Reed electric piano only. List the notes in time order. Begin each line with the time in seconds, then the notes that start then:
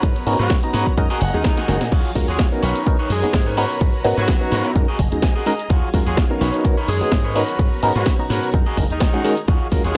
0.26 B3 C#4 D#4 F#4 A#4
0.63 B3 C#4 D#4 F#4 A#5
0.97 G#3 C#4 D#4 F#4 A#4
1.34 G#3 C#4 D#4 F#4 G#4
1.68 G#3 C#4 D#4 F#4 A#4
2.15 G#3 C#4 F4 F#4 A#4
2.52 B3 C#4 D#4 F#4 A#4
2.86 B3 C#4 D#4 F#4 A#4
3.23 B3 C#4 D#4 F#4 G#4
3.57 B3 C#4 D#4 F#4 A#4
4.04 B3 C#4 D#4 F#4 A#4
4.41 B3 C#4 D#4 F#4 A#5
4.76 G#3 C#4 D#4 F#4 A#4
5.12 G#3 C#4 D#4 F#4 G#4
5.46 G#3 C#4 D#4 F#4 A#4
5.93 G#3 C#4 F4 F#4 A#4
6.30 B3 C#4 D#4 F#4 A#4
6.64 B3 C#4 D#4 F#4 A#4
7.01 B3 C#4 D#4 F#4 G#4
7.35 B3 C#4 D#4 F#4 A#4
7.83 B3 C#4 D#4 F#4 A#4
8.19 B3 C#4 D#4 F#4 A#5
8.53 G#3 C#4 D#4 F#4 A#4
8.77 G#3 C#4 D#4 F#4 A#4
9.13 G#3 C#4 D#4 F#4 G#4
9.24 G#3 C#4 D#4 F#4 A#4
9.72 G#3 C#4 F4 F#4 A#4